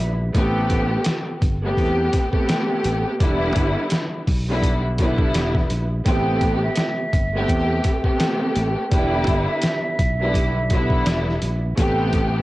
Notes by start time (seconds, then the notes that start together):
Already playing: D3 G3 B3 E4 E5
0.00 A#1
0.33 A1 C3 A3 B3 G4, kick, closed hi-hat
0.70 kick, closed hi-hat
1.05 snare, closed hi-hat
1.42 G1, kick, closed hi-hat
1.63 C3 A3 B3 G4
1.77 E2, kick, closed hi-hat
2.13 kick, snare, closed hi-hat
2.30 C3 A3 B3 G4, kick
2.49 snare, closed hi-hat
2.84 A1, closed hi-hat
3.18 E1 D3 G3 B3 E4, kick, closed hi-hat
3.56 G1, kick, closed hi-hat
3.90 snare, closed hi-hat
4.28 B1, kick, open hi-hat
4.49 D3 G3 B3 E4
4.63 kick, closed hi-hat
4.98 D3 G3 B3 E4, kick, closed hi-hat
5.18 kick
5.34 E1, snare, closed hi-hat
5.55 kick, snare
5.70 A#1, closed hi-hat
6.05 A1 C3 A3 B3 G4 G5, kick, closed hi-hat
6.41 kick, closed hi-hat
6.62 E5
6.76 snare, closed hi-hat
7.13 G1, kick, closed hi-hat
7.34 C3 A3 B3 G4
7.48 E2, kick, closed hi-hat
7.84 kick, snare, closed hi-hat
8.01 C3 A3 B3 G4, kick
8.20 snare, closed hi-hat
8.56 A1, closed hi-hat
8.90 E1 D3 G3 B3 E4 G5, kick, closed hi-hat
9.27 G1, kick, closed hi-hat
9.48 E5
9.62 snare, closed hi-hat
9.99 B1, kick, closed hi-hat
10.20 D3 G3 B3 E4
10.34 kick, closed hi-hat
10.70 D3 G3 B3 E4, kick, closed hi-hat
10.90 kick
11.06 E1, snare, closed hi-hat
11.28 snare
11.41 A#1, closed hi-hat
11.76 A1 C3 A3 B3 G4, kick, closed hi-hat
12.13 kick, closed hi-hat